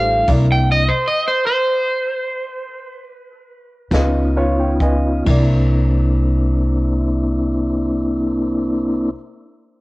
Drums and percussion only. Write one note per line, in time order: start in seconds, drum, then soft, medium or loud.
0.28 kick medium
0.28 closed hi-hat medium
0.28 crash medium
3.91 kick medium
3.91 snare medium
3.91 closed hi-hat medium
4.80 kick medium
4.80 closed hi-hat medium
5.26 kick medium
5.26 crash medium